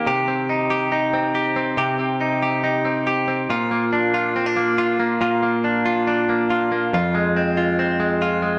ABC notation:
X:1
M:4/4
L:1/16
Q:1/4=140
K:Bbmix
V:1 name="Clean electric guitar"
[C,G]2 C2 E2 G2 E2 C2 G2 C2 | [C,G]2 C2 E2 G2 E2 C2 G2 C2 | [B,,F]2 B,2 D2 F2 C D B,2 F2 B,2 | [B,,F]2 B,2 D2 F2 D2 B,2 F2 B,2 |
[F,,F]2 A,2 C2 F2 C2 A,2 F2 A,2 |]